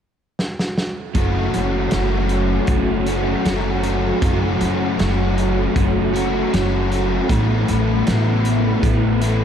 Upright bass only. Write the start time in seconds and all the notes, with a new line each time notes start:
1.15 F#1
1.54 F#1
1.93 F#1
2.68 F#1
3.46 F#1
4.22 F#1
4.61 F#1
5.01 F#1
5.76 F#1
6.54 F#1
7.30 A1
7.70 A1
8.08 A1
8.83 A1